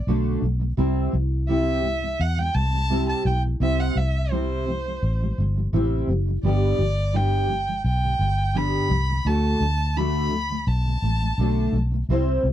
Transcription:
0.07 fingered electric bass B1, steel-string acoustic guitar D3 A3 D4 F#4 A4
0.42 fingered electric bass B1, steel-string acoustic guitar D3 A3
0.59 steel-string acoustic guitar D3 A3
0.77 fingered electric bass C2, steel-string acoustic guitar C3 G3 C4 E4 G4
1.12 fingered electric bass C2, steel-string acoustic guitar C3 G3
1.48 steel-string acoustic guitar C3 G3 C4 E4 G4, violin E5
1.83 steel-string acoustic guitar C3 G3
2.01 steel-string acoustic guitar C3 G3
2.20 fingered electric bass E2, violin F#5
2.36 steel-string acoustic guitar C3 G3, violin G5
2.54 fingered electric bass C2, steel-string acoustic guitar C3 G3, violin A5
2.72 steel-string acoustic guitar C3 G3
2.89 steel-string acoustic guitar C3 G3 C4 E4 G4
3.09 violin A5
3.25 fingered electric bass B1, steel-string acoustic guitar C3 G3, violin G5
3.43 steel-string acoustic guitar C3 G3
3.60 fingered electric bass C2, steel-string acoustic guitar C3 G3 C4 E4 G4, violin E5
3.80 violin F#5
3.95 fingered electric bass C2, steel-string acoustic guitar C3 G3, violin E5
4.31 steel-string acoustic guitar C3 G3 C4 E4 G4, violin C5
4.67 steel-string acoustic guitar C3 G3
4.85 steel-string acoustic guitar C3 G3
5.03 fingered electric bass A1
5.21 steel-string acoustic guitar C3 G3
5.38 fingered electric bass G1, steel-string acoustic guitar C3 G3
5.55 steel-string acoustic guitar C3 G3
5.73 fingered electric bass A1, steel-string acoustic guitar C3 G3 C4 E4 G4
6.07 fingered electric bass F#1, steel-string acoustic guitar C3 G3
6.26 steel-string acoustic guitar C3 G3
6.43 fingered electric bass G1, steel-string acoustic guitar G2 D3 G3 B3 D4 G4, violin D5
6.79 fingered electric bass G1, steel-string acoustic guitar G2 D3 G3
7.13 steel-string acoustic guitar G2 D3 G3 B3 D4 G4, violin G5
7.48 steel-string acoustic guitar G2 D3 G3
7.67 steel-string acoustic guitar G2 D3 G3
7.84 fingered electric bass B1, violin G5
8.03 steel-string acoustic guitar G2 D3 G3
8.19 fingered electric bass G1, steel-string acoustic guitar G2 D3 G3
8.54 steel-string acoustic guitar G2 D3 G3 B3 D4 G4, violin B5
8.90 fingered electric bass C2, steel-string acoustic guitar G2 D3 G3
9.09 steel-string acoustic guitar G2 D3 G3
9.25 fingered electric bass D2, steel-string acoustic guitar D3 A3 D4 F#4 A4, violin A5
9.60 fingered electric bass D2, steel-string acoustic guitar D3 A3
9.96 steel-string acoustic guitar D3 A3 D4 F#4 A4, violin B5
10.31 steel-string acoustic guitar D3 A3
10.49 steel-string acoustic guitar D3 A3
10.67 fingered electric bass B1, violin A5
10.85 steel-string acoustic guitar D3 A3
11.02 fingered electric bass A1, steel-string acoustic guitar D3 A3
11.21 steel-string acoustic guitar D3 A3
11.38 fingered electric bass B1, steel-string acoustic guitar D3 A3 D4 F#4 A4
11.73 fingered electric bass B1, steel-string acoustic guitar D3 A3
11.92 steel-string acoustic guitar D3 A3
12.09 fingered electric bass C2, steel-string acoustic guitar C3 G3 C4 E4 C5
12.43 fingered electric bass C2, steel-string acoustic guitar C3 G3

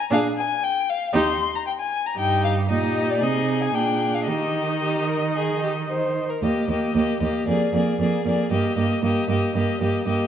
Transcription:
0.10 cello A#2, viola D4, violin G#4 F5
0.38 violin G#5
0.63 violin G5
0.90 violin F5
1.13 cello D#2, viola D#4, violin G4 C6
1.55 violin A#5
1.67 violin G5
1.79 violin G#5
2.06 violin A#5
2.17 cello G2, viola D#4, violin G4 G5
2.44 violin F5
2.69 cello A#2, viola D#4, violin G4 D#5
3.10 violin D5
3.21 cello C3, viola D#4, violin G#4 D#5
3.61 violin G#5
3.74 cello A#2, viola D4, violin G#4 G5
4.14 violin F5
4.28 cello D#3, viola D#4, violin G4 D#5
4.82 violin G4
5.09 violin A#4
5.36 violin G#4
5.63 violin G4
5.90 violin C5
6.30 violin A#4
6.42 cello D#2, viola A#3, violin G4 D#5
6.69 cello D#2, viola A#3, violin G4 D#5
6.95 cello D#2, viola A#3, violin G4 D#5
7.21 cello D#2, viola A#3, violin G4 D#5
7.47 cello F2, viola A#3, violin G#4 D5
7.73 cello F2, viola A#3, violin G#4 D5
7.99 cello F2, viola A#3, violin G#4 D5
8.25 cello F2, viola A#3, violin G#4 D5
8.51 cello G2, viola A#3, violin G4 D#5
8.77 cello G2, viola A#3, violin G4 D#5
9.02 cello G2, viola A#3, violin G4 D#5
9.28 cello G2, viola A#3, violin G4 D#5
9.55 cello G2, viola A#3, violin G4 D#5
9.80 cello G2, viola A#3, violin G4 D#5
10.06 cello G2, viola A#3, violin G4 D#5

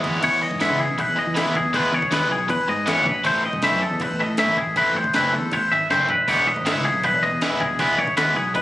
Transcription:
Already playing: overdriven electric guitar E3
0.03 fingered electric bass E2, clean electric guitar E2 C#5, overdriven electric guitar G#3 B3 E4, floor tom, ride
0.21 fingered electric bass E2, overdriven electric guitar E3 G#3 B3 E4, clean electric guitar C#5, kick, crash
0.41 clean electric guitar D#5, muted overdriven electric guitar stroke
0.51 fingered electric bass G#2, kick
0.60 overdriven electric guitar E3 G#3 B3 E4, clean electric guitar E5, snare, crash
0.70 fingered electric bass C#3
0.79 clean electric guitar G#4, muted overdriven electric guitar stroke
0.89 fingered electric bass B1
0.99 clean electric guitar B4, muted overdriven electric guitar stroke, kick, crash
1.09 fingered electric bass E2
1.17 clean electric guitar D#5, muted overdriven electric guitar stroke
1.27 fingered electric bass E3
1.35 overdriven electric guitar E3 G#3 B3 E4, clean electric guitar E5, snare, crash
1.46 fingered electric bass E2
1.55 clean electric guitar G#4, muted overdriven electric guitar stroke, kick
1.65 fingered electric bass E2
1.73 overdriven electric guitar E3 G#3 B3 E4, clean electric guitar B4, kick, crash
1.92 fingered electric bass E2, clean electric guitar C#5, muted overdriven electric guitar stroke
2.02 kick
2.11 fingered electric bass D#2, overdriven electric guitar E3 G#3 B3 E4, clean electric guitar B4, snare, crash
2.30 fingered electric bass B1, clean electric guitar G#4, muted overdriven electric guitar stroke
2.48 fingered electric bass E2, clean electric guitar B4, muted overdriven electric guitar stroke, kick, crash
2.68 fingered electric bass G#2, clean electric guitar D#5, muted overdriven electric guitar stroke
2.86 fingered electric bass E2, overdriven electric guitar E3 G#3 B3 E4, clean electric guitar C#5, snare, crash
3.05 fingered electric bass A#1, clean electric guitar B4, muted overdriven electric guitar stroke, kick
3.24 fingered electric bass A1, overdriven electric guitar E3 A3 C4 E4, clean electric guitar C5, kick, crash
3.43 clean electric guitar D#5, muted overdriven electric guitar stroke
3.53 fingered electric bass C2, kick
3.62 overdriven electric guitar E3 A3 C4 E4, clean electric guitar E5, snare, crash
3.72 fingered electric bass F#2
3.81 clean electric guitar A4, muted overdriven electric guitar stroke
3.90 fingered electric bass E2
4.00 clean electric guitar B4, muted overdriven electric guitar stroke, kick, crash
4.10 fingered electric bass A1
4.20 clean electric guitar D#5, muted overdriven electric guitar stroke
4.29 fingered electric bass A2
4.37 overdriven electric guitar E3 A3 C4 E4, clean electric guitar E5, snare, crash
4.47 fingered electric bass A1
4.57 clean electric guitar G#4, muted overdriven electric guitar stroke, kick
4.66 fingered electric bass A1
4.76 overdriven electric guitar E3 A3 C4 E4, clean electric guitar B4, kick, crash
4.95 fingered electric bass A1, clean electric guitar C5, muted overdriven electric guitar stroke
5.04 kick
5.13 fingered electric bass F#1, overdriven electric guitar E3 A3 C4 E4, clean electric guitar B4, snare, crash
5.34 fingered electric bass E2, clean electric guitar A4, muted overdriven electric guitar stroke
5.51 fingered electric bass A1, clean electric guitar C5, muted overdriven electric guitar stroke, kick, crash
5.72 fingered electric bass G#1, clean electric guitar E5, muted overdriven electric guitar stroke
5.90 fingered electric bass F#1, overdriven electric guitar E3 A3 C4 E4, clean electric guitar C5, snare
6.09 fingered electric bass E1, clean electric guitar B4, muted overdriven electric guitar stroke, floor tom
6.28 fingered electric bass E1, overdriven electric guitar E3 G#3 B3 E4, clean electric guitar C#5, kick, splash, crash
6.47 clean electric guitar D#5, muted overdriven electric guitar stroke
6.56 fingered electric bass G#1, kick
6.66 overdriven electric guitar E3 G#3 B3 E4, clean electric guitar E5, snare, crash
6.75 fingered electric bass C#2
6.85 clean electric guitar G#4, muted overdriven electric guitar stroke
6.94 fingered electric bass B1
7.03 clean electric guitar B4, muted overdriven electric guitar stroke, kick, crash
7.14 fingered electric bass E1
7.23 clean electric guitar D#5, muted overdriven electric guitar stroke
7.32 fingered electric bass E2
7.41 overdriven electric guitar E3 G#3 B3 E4, clean electric guitar E5, snare, crash
7.51 fingered electric bass E1
7.60 clean electric guitar G#4, muted overdriven electric guitar stroke, kick
7.71 fingered electric bass E1
7.79 overdriven electric guitar E3 G#3 B3 E4, clean electric guitar B4, kick, crash
7.98 fingered electric bass E1, clean electric guitar C#5, muted overdriven electric guitar stroke
8.08 kick
8.17 fingered electric bass D#2, overdriven electric guitar E3 G#3 B3 E4, clean electric guitar B4, snare, crash
8.36 fingered electric bass B1, clean electric guitar G#4, muted overdriven electric guitar stroke
8.55 fingered electric bass E1, clean electric guitar B4, muted overdriven electric guitar stroke, kick, crash

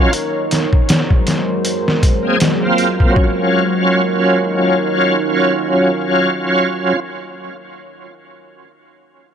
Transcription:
Already playing: tonewheel organ C#4 F4, ambient pad D#4 A#4 C#5
0.13 ambient pad F#3 G#3 C5, closed hi-hat
0.51 snare, closed hi-hat
0.73 kick
0.89 snare, closed hi-hat
1.10 kick
1.27 snare, closed hi-hat
1.65 closed hi-hat
1.88 snare
2.03 kick, closed hi-hat
2.23 tonewheel organ A#3 C4
2.27 tonewheel organ G#4
2.40 snare, closed hi-hat
2.61 tonewheel organ A#3 C4
2.65 tonewheel organ F4
2.78 closed hi-hat
3.00 kick
3.10 tonewheel organ F#3
3.16 tonewheel organ C#4, ambient pad D#4 A#4 C#5, kick
3.23 tonewheel organ F4

